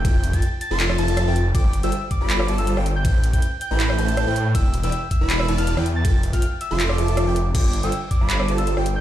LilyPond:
<<
  \new Staff \with { instrumentName = "Soft synth lead" } { \time 4/4 \key f \lydian \tempo 4 = 160 g'''8. a'''8 r16 a'''8 r16 a'''4. r16 | d'''8 r16 e'''8 r16 d'''8 r16 d'''16 r16 e'''16 r8. g'''16~ | g'''8 r16 g'''8 r16 g'''8 r16 g'''4. r16 | e'''8 r16 e'''8 r16 e'''8 r16 e'''16 r16 f'''16 r8. a'''16~ |
a'''8 r16 f'''8 r16 e'''8 r16 d'''4. r16 | d'''8. e'''8 r16 d'''8 r16 d'''16 r16 e'''16 r8. g'''16 | }
  \new Staff \with { instrumentName = "Digital synth lead" } { \time 4/4 \key f \lydian g''16 r8 g''16 r8. c'''8. a''8. g''16 r8 | g''16 r8 g''16 r8. b''8. a''8. g''16 r8 | g''16 r8 g''16 r8. b''8. a''8. g''16 r8 | g''16 r8 g''16 r8. b''8. a''8. g''16 r8 |
g''16 r8 g''16 r8. c'''8. a''8. g''16 r8 | g''16 r8 g''16 r8. b''8. a''8. g''16 r8 | }
  \new Staff \with { instrumentName = "Supersaw synth" } { \time 4/4 \key f \lydian <f f' a' e'' g''>16 r8 <f f' a' e'' g''>16 r8. <f f' a' e'' c'''>8. <f f' a' e'' a''>8. <f f' a' e'' g''>16 r8 | <g f' a' c'' g''>16 r8 <g f' a' c'' g''>16 r8. <g f' a' c'' b''>8. <g f' a' c'' a''>8. <g f' a' c'' g''>16 r8 | <a e' b' c'' g''>16 r8 <a e' b' c'' g''>16 r8. <a e' b' c'' b''>8. <a e' b' c'' a''>8. <a e' b' c'' g''>16 r8 | <e e' b' d'' g''>16 r8 <e e' b' d'' g''>16 r8. <e e' b' d'' b''>8. <e e' b' d'' a''>8. <e e' b' d'' g''>16 r8 |
<f f' a' e'' g''>16 r8 <f f' a' e'' g''>16 r8. <f f' a' e'' c'''>8. <f f' a' e'' a''>8. <f f' a' e'' g''>16 r8 | <g f' a' c'' g''>16 r8 <g f' a' c'' g''>16 r8. <g f' a' c'' b''>8. <g f' a' c'' a''>8. <g f' a' c'' g''>16 r8 | }
  \new Staff \with { instrumentName = "Detuned saw bass" } { \clef bass \time 4/4 \key f \lydian f,,8. f,,16 r8. f,,8. f,,8. f,,8. | g,,8. g,,16 r8. g,,8. g,,8. g,,8. | a,,8. a,,16 r8. a,,8. a,,8. a,8. | e,,8. e,,16 r8. e,,8. e,,8. e,8. |
f,,8. f,,16 r8. f,,8. f,,8. f,,8. | g,,8. g,,16 r8. g,,8. g,,8. g,,8. | }
  \new DrumStaff \with { instrumentName = "Drums" } \drummode { \time 4/4 <hh bd cymr>8 hh16 <hh bd>16 hh8 hh8 <hc hh cymr>16 ss16 hh16 hh16 <hh ss>8 hh8 | <hh bd cymr>8 hh16 hh16 hh8 <hh bd>8 <hc hh cymr>16 ss16 hh16 hh16 hh16 ss16 hh8 | <hh bd cymr>8 hh16 <hh bd>16 hh8 hh8 <hc hh cymr>16 ss16 hh16 hh16 <hh ss>8 hh8 | <hh bd cymr>8 hh16 hh16 hh8 <hh bd>8 <hc hh cymr>16 ss16 hh16 hh16 hh16 ss16 hh8 |
<hh bd cymr>8 hh16 <hh bd>16 hh8 hh8 <hc hh cymr>16 ss16 hh16 hh16 <hh ss>8 hh8 | <cymc hh bd cymr>8 hh16 hh16 hh8 <hh bd>8 <hc hh cymr>16 ss16 hh16 hh16 hh16 ss16 hh8 | }
>>